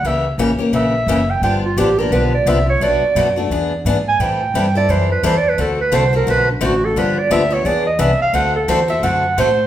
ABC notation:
X:1
M:4/4
L:1/16
Q:"Swing" 1/4=174
K:G
V:1 name="Clarinet"
e2 z6 e6 g2 | g2 =F2 G2 _B2 =B2 d2 e2 ^c2 | d6 z8 ^g2 | g6 d2 c2 B2 (3c2 d2 B2 |
A2 B2 c2 _B2 =B2 D2 F2 A2 | B2 d2 e2 ^c2 d2 _e2 =e2 =f2 | f2 A2 c2 e2 f4 c4 |]
V:2 name="Steel-string acoustic guitar"
[^C,E,^A,^CG]2 z2 [C,E,A,CG] z [A,CG]2 [C,E,A,CG]2 z2 [C,E,A,CG] z3 | [D,=F,B,DG]2 z2 [D,F,B,DG] z [B,DG]2 [D,F,B,DG]2 z2 [D,F,B,DG] z3 | [B,,F,A,DF]2 z2 [B,,F,A,DF] z [A,DF]2 [E,B,D^G]2 z2 [E,B,DG] z3 | [E,G,CEA]2 z2 [E,G,CEA] z [CEA]2 [E,G,CEA]2 z2 [E,G,CEA] z3 |
[D,A,CFA]2 z2 [D,A,CFA] z [CFA]2 [D,A,CFA]2 z2 [D,A,CFA] z3 | [D,=F,B,DG]2 z2 [D,F,B,DG] z [B,DG]2 [E,B,D^G]2 z2 [E,B,DG] z3 | [D,A,CFA]2 z2 [D,A,CFA] z [CFA]2 [D,A,CFA]2 z2 [D,A,CFA] z3 |]
V:3 name="Upright bass" clef=bass
^C,,4 A,,,2 z2 ^A,,,4 F,,,4 | G,,,4 A,,,4 B,,,4 C,,4 | B,,,2 z2 F,,4 E,,4 ^G,,4 | A,,4 G,,4 F,,4 E,,4 |
D,,4 C,,4 B,,,4 A,,,4 | G,,,4 D,,4 E,,4 C,,2 z2 | D,,4 E,,4 F,,4 A,,4 |]